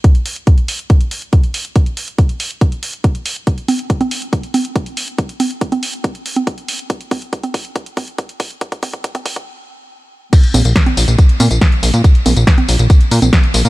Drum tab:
CC |----------------|----------------|----------------|----------------|
HH |xxoxxxoxxxoxxxox|xxoxxxoxxxoxxxox|xxoxxxoxxxoxxxox|xxoxxxoxxxoxxxox|
TB |----------------|----------------|----------------|----------------|
SD |----------------|----------------|----------------|----------------|
CG |----------------|----------------|--o--o----o-----|--o--o-----o----|
BD |o---o---o---o---|o---o---o---o---|o---o---o---o---|o---o---o---o---|

CC |----------------|----------------|x---------------|----------------|
HH |xxoxxxoxxxoxxxox|xxoxxxox--------|xxoxxxoxxxoxxxox|xxoxxxoxxxoxxxox|
TB |----------------|----------------|x-xxx-xxx-xxx-xx|x-xxx-xxx-xxx-xx|
SD |----------------|----------------|----o-------o---|----o-------o---|
CG |--o--o----o-----|--o--o----------|--o--o----o-----|--o--o-----o----|
BD |o-o-o-o-o-o-o-o-|oooooooo--------|o---o---o---o---|o---o---o---o---|